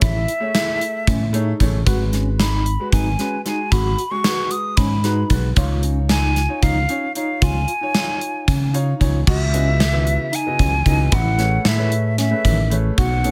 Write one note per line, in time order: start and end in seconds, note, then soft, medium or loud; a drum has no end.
0.00 0.24 A1 medium
0.00 0.16 A3 medium
0.00 0.31 E4 medium
0.00 0.17 G#4 medium
0.00 0.17 C#5 medium
0.00 1.56 E5 loud
0.00 kick loud
0.00 closed hi-hat medium
0.28 closed hi-hat medium
0.40 0.49 A3 medium
0.40 0.49 G#4 medium
0.40 0.50 C#5 medium
0.54 1.04 A3 medium
0.54 0.84 E4 medium
0.54 1.04 G#4 medium
0.54 1.05 E5 medium
0.54 snare medium
0.54 closed hi-hat medium
0.81 closed hi-hat medium
1.07 1.52 A2 medium
1.07 1.22 C#4 medium
1.07 kick medium
1.07 closed hi-hat medium
1.33 1.50 A3 medium
1.33 1.64 D#4 medium
1.33 1.50 G#4 medium
1.33 1.51 C#5 loud
1.33 closed hi-hat medium
1.60 1.83 A1 medium
1.60 1.77 A3 medium
1.60 1.77 G#4 medium
1.60 1.77 C#5 medium
1.60 kick medium
1.60 closed hi-hat medium
1.86 2.76 G#1 medium
1.86 2.44 G#3 medium
1.86 2.44 F#4 medium
1.86 2.02 F#4 medium
1.86 2.45 B4 medium
1.86 kick medium
1.86 closed hi-hat medium
2.13 2.28 C#4 medium
2.13 snare soft
2.13 closed hi-hat medium
2.39 2.69 D#4 medium
2.39 2.89 B5 medium
2.39 snare medium
2.39 closed hi-hat medium
2.66 closed hi-hat soft
2.79 3.04 G#3 medium
2.79 3.05 F#4 medium
2.79 3.05 B4 medium
2.92 3.15 G#1 medium
2.92 3.08 D#4 medium
2.92 3.42 G#5 medium
2.92 kick medium
2.92 closed hi-hat medium
3.19 3.36 G#3 medium
3.19 3.34 C#4 medium
3.19 3.36 F#4 medium
3.19 3.36 B4 medium
3.19 snare soft
3.19 closed hi-hat soft
3.45 3.87 G#3 medium
3.45 3.60 D#4 medium
3.45 3.87 F#4 medium
3.45 3.87 G#4 medium
3.45 3.73 G#5 medium
3.45 snare soft
3.45 closed hi-hat medium
3.72 3.94 G#1 medium
3.72 4.02 F#4 medium
3.72 4.13 B5 medium
3.72 kick medium
3.72 closed hi-hat medium
3.98 closed hi-hat medium
4.11 4.20 G#3 medium
4.11 4.20 F#4 medium
4.11 4.20 G#4 medium
4.11 4.53 C#6 medium
4.24 4.74 G#3 medium
4.24 4.75 F#4 medium
4.24 4.54 F#4 medium
4.24 4.75 B4 medium
4.24 snare medium
4.24 closed hi-hat medium
4.51 4.78 D#6 medium
4.51 closed hi-hat medium
4.77 5.22 G#2 medium
4.77 4.93 C#4 medium
4.77 5.37 B5 medium
4.77 kick medium
4.77 closed hi-hat medium
5.04 5.20 G#3 medium
5.04 5.33 D#4 medium
5.04 5.21 F#4 medium
5.04 5.21 B4 medium
5.04 snare soft
5.04 closed hi-hat medium
5.30 5.53 B1 medium
5.30 5.47 G#3 medium
5.30 5.47 F#4 medium
5.30 5.47 B4 medium
5.30 kick medium
5.30 closed hi-hat medium
5.55 6.46 C#2 medium
5.55 6.14 D#4 medium
5.55 6.15 F4 medium
5.55 5.72 F4 medium
5.55 6.15 C#5 medium
5.55 kick loud
5.55 closed hi-hat medium
5.83 5.98 C#4 medium
5.83 closed hi-hat medium
6.09 6.39 D#4 medium
6.09 6.64 G#5 medium
6.09 snare medium
6.09 closed hi-hat medium
6.36 snare soft
6.36 closed hi-hat medium
6.49 6.74 D#4 medium
6.49 6.74 F4 medium
6.49 6.75 C#5 medium
6.62 6.85 C#2 medium
6.62 6.78 D#4 medium
6.62 7.16 F5 medium
6.62 kick medium
6.62 closed hi-hat medium
6.89 7.04 C#4 medium
6.89 7.06 D#4 medium
6.89 7.06 F4 medium
6.89 7.06 C#5 medium
6.89 closed hi-hat medium
7.15 7.57 D#4 medium
7.15 7.31 D#4 medium
7.15 7.57 F4 medium
7.15 7.57 C#5 medium
7.15 7.45 F5 medium
7.15 closed hi-hat medium
7.42 7.64 C#2 medium
7.42 7.71 F4 medium
7.42 8.75 G#5 medium
7.42 kick medium
7.42 closed hi-hat medium
7.68 closed hi-hat medium
7.81 7.90 D#4 medium
7.81 7.90 F4 medium
7.81 7.91 C#5 medium
7.95 8.45 D#4 medium
7.95 8.45 F4 medium
7.95 8.24 F4 medium
7.95 snare medium
7.95 closed hi-hat medium
8.21 closed hi-hat medium
8.48 8.93 C#3 medium
8.48 8.62 C#4 medium
8.48 kick medium
8.48 closed hi-hat medium
8.73 8.90 D#4 medium
8.73 9.03 D#4 medium
8.73 8.91 F4 medium
8.73 8.91 C#5 loud
8.73 8.99 F5 medium
8.73 closed hi-hat medium
9.00 9.23 C#2 medium
9.00 9.17 D#4 medium
9.00 9.17 F4 medium
9.00 9.17 C#5 medium
9.00 9.25 G#5 medium
9.00 kick medium
9.00 closed hi-hat medium
9.27 10.17 C#2 medium
9.27 9.42 F#4 medium
9.27 10.37 E5 medium
9.27 kick medium
9.27 crash medium
9.53 9.78 C#3 medium
9.53 9.79 B3 medium
9.53 9.68 C#4 medium
9.53 9.78 E4 medium
9.53 9.79 F#4 medium
9.53 9.79 D#5 medium
9.53 closed hi-hat medium
9.80 10.09 D#3 medium
9.80 snare medium
9.80 closed hi-hat medium
9.92 10.26 C#3 medium
9.92 10.27 E3 medium
9.92 10.26 B3 medium
9.92 10.27 F#4 medium
9.92 10.27 E5 medium
10.07 closed hi-hat medium
10.33 10.47 D#4 medium
10.33 11.15 G#5 loud
10.33 closed hi-hat medium
10.46 10.71 C#3 medium
10.46 10.71 B3 medium
10.46 10.71 E4 medium
10.46 10.71 F#4 medium
10.46 10.72 D#5 medium
10.59 10.82 C#2 medium
10.59 10.74 C#4 medium
10.59 kick medium
10.59 closed hi-hat medium
10.86 11.08 C#2 medium
10.86 11.13 C#3 medium
10.86 11.13 B3 medium
10.86 11.01 D#4 medium
10.86 11.13 E4 medium
10.86 11.13 F#4 medium
10.86 11.13 D#5 medium
10.86 kick medium
10.86 closed hi-hat medium
11.12 11.57 A1 loud
11.12 11.41 E4 medium
11.12 11.69 F#5 loud
11.12 kick loud
11.12 closed hi-hat medium
11.38 11.63 A3 medium
11.38 11.63 G#4 medium
11.38 11.64 B4 medium
11.38 11.64 C#5 medium
11.38 snare soft
11.38 closed hi-hat medium
11.65 12.32 A2 medium
11.65 11.94 E4 medium
11.65 12.19 E5 medium
11.65 snare loud
11.65 closed hi-hat medium
11.77 12.11 A3 medium
11.77 12.11 G#4 medium
11.77 12.12 B4 medium
11.77 12.12 C#5 medium
11.92 closed hi-hat medium
12.18 12.33 C#4 medium
12.18 12.75 E5 medium
12.18 snare soft
12.18 closed hi-hat medium
12.30 12.56 A3 medium
12.30 12.56 G#4 medium
12.30 12.56 B4 medium
12.30 12.57 C#5 medium
12.45 12.90 A1 medium
12.45 12.74 D#3 medium
12.45 kick medium
12.45 closed hi-hat medium
12.70 12.97 A3 medium
12.70 12.98 G#4 medium
12.70 12.98 B4 medium
12.70 12.98 C#5 medium
12.70 closed hi-hat medium
12.98 13.31 B1 loud
12.98 13.12 F#4 medium
12.98 13.31 F#5 medium
12.98 kick loud
12.98 closed hi-hat medium
13.24 13.31 B2 medium
13.24 13.31 A3 medium
13.24 13.31 C#4 medium
13.24 13.31 D#4 medium
13.24 13.31 G#4 medium
13.24 13.31 C#5 medium
13.24 closed hi-hat medium